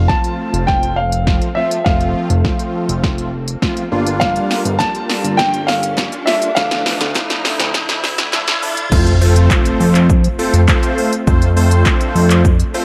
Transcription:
Already playing: F1 C4 A4, riser
0.08 F3 A3 C4 F4 A5, kick, snare
0.24 closed hi-hat
0.54 F1, closed hi-hat
0.67 G5, kick, snare
0.83 closed hi-hat
0.96 F5
1.12 closed hi-hat
1.27 F3 A3 C4 F4, kick, snare
1.42 closed hi-hat
1.55 F3 A3 C4 F4 E5
1.71 closed hi-hat
1.85 F1 F3 A3 C4 F4 F5, kick, snare
2.01 closed hi-hat
2.30 F1, closed hi-hat
2.45 F3 A3 C4 F4, kick, snare
2.59 closed hi-hat
2.89 F1, closed hi-hat
3.04 kick, snare
3.18 closed hi-hat
3.48 closed hi-hat
3.62 F3 A3 C4 F4, kick, snare
3.77 closed hi-hat
3.92 G1 G3 A#3 D4 F4 A4 A#4
4.07 closed hi-hat
4.20 F5, kick, snare, shaker
4.36 closed hi-hat, shaker
4.51 snare, open hi-hat, shaker
4.65 G1, closed hi-hat, shaker
4.79 G3 A#3 D4 F4 A5, kick, snare, clap, shaker
4.95 closed hi-hat, shaker
5.10 snare, open hi-hat, shaker
5.24 G1, closed hi-hat, shaker
5.37 G5, kick, snare, shaker
5.54 closed hi-hat, shaker
5.67 F5, snare, open hi-hat, shaker
5.83 closed hi-hat, shaker
5.97 G3 A#3 D4 F4, kick, snare, clap, shaker
6.12 closed hi-hat, shaker
6.26 G3 A#3 D4 F4 E5, snare, open hi-hat, shaker
6.42 closed hi-hat, shaker
6.55 D2 D3 E3 F3 A3 D4 F5, kick, snare, shaker
6.71 snare, closed hi-hat, shaker
6.86 snare, open hi-hat, shaker
7.01 D2, snare, closed hi-hat, shaker
7.15 F3 A3 D4 E4, kick, snare, clap, shaker
7.30 snare, closed hi-hat, shaker
7.45 snare, open hi-hat, shaker
7.60 D2, snare, closed hi-hat, shaker
7.74 kick, snare, shaker
7.89 snare, closed hi-hat, shaker
8.04 snare, open hi-hat, shaker
8.18 snare, closed hi-hat, shaker
8.33 F3 A3 D4 E4, snare, clap, shaker
8.48 snare, closed hi-hat, shaker
8.62 F3 A3 D4 E4, open hi-hat, shaker
8.77 closed hi-hat, shaker
8.92 F2 A3 C4 F4 A4 C5, kick, crash, impact, shaker
9.07 closed hi-hat, shaker
9.21 A3 C4 F4 A4 C5, open hi-hat, shaker
9.36 closed hi-hat, shaker
9.51 kick, clap, shaker
9.65 closed hi-hat, shaker
9.80 F2, open hi-hat, shaker
9.95 clap, closed hi-hat, shaker
10.10 kick, shaker
10.24 closed hi-hat, shaker
10.39 A3 C4 F4 A4 C5, open hi-hat, shaker
10.54 F2, closed hi-hat, shaker
10.68 A3 C4 F4 A4 C5, kick, clap, shaker
10.83 closed hi-hat, shaker
10.98 open hi-hat, shaker
11.13 closed hi-hat, shaker
11.27 F2 A3 C4 D4 F4 A4 C5, kick, shaker
11.42 closed hi-hat, shaker
11.56 A3 C4 F4 A4 C5, open hi-hat, shaker
11.71 closed hi-hat, shaker
11.86 kick, clap, shaker
12.01 closed hi-hat, shaker
12.15 F2, open hi-hat, shaker
12.30 clap, closed hi-hat, shaker
12.45 kick, shaker
12.60 closed hi-hat, shaker
12.74 A3 C4 F4 A4 C5, open hi-hat, shaker

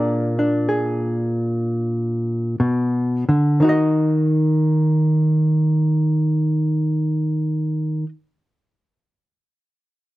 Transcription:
Already playing: A#2 A#3 D4 G#4 D5
0.39 D4
0.69 G#4
2.60 B2
3.29 D3
3.60 D#3 D#4
3.64 F#4
3.69 D#5

